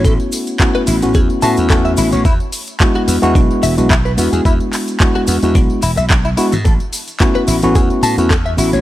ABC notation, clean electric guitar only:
X:1
M:4/4
L:1/16
Q:"Swing 16ths" 1/4=109
K:A
V:1 name="Clean electric guitar"
A z4 B E z G z a z A e E c | E z4 F B, z D z e z E B B, G | E z4 F B, z D z E e D E E E, | A z4 B E z G z a z A e E c |]